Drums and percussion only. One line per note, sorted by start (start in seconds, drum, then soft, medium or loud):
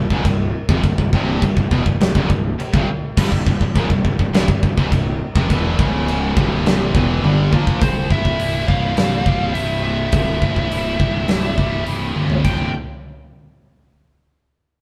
0.10 kick medium
0.25 kick loud
0.25 china medium
0.69 kick loud
0.84 kick medium
0.84 china medium
0.98 kick medium
1.13 kick medium
1.42 kick medium
1.42 china medium
1.57 kick medium
1.71 kick medium
1.86 kick medium
2.01 snare loud
2.01 china medium
2.15 kick loud
2.30 kick medium
2.60 china medium
2.74 kick loud
3.17 kick loud
3.17 crash loud
3.17 china medium
3.32 kick medium
3.46 kick medium
3.61 kick medium
3.76 kick medium
3.76 china medium
3.90 kick medium
4.05 kick medium
4.19 kick medium
4.34 snare loud
4.34 china medium
4.48 kick loud
4.63 kick medium
4.78 kick medium
4.92 kick loud
4.92 china medium
5.36 kick loud
5.50 kick loud
5.50 china medium
5.79 kick loud
6.08 china medium
6.37 kick loud
6.66 snare loud
6.66 china medium
6.95 kick loud
7.24 high tom medium
7.53 kick medium
7.67 kick medium
7.81 kick loud
7.81 open hi-hat medium
8.11 kick medium
8.25 kick medium
8.40 open hi-hat medium
8.68 kick medium
8.97 snare loud
8.97 open hi-hat soft
9.26 kick medium
9.55 open hi-hat medium
10.12 kick loud
10.12 open hi-hat soft
10.42 kick medium
10.56 kick medium
10.72 open hi-hat soft
11.00 kick medium
11.28 snare loud
11.28 open hi-hat soft
11.58 kick medium
11.87 open hi-hat soft
12.16 high tom soft
12.30 floor tom medium
12.44 kick loud
12.44 crash medium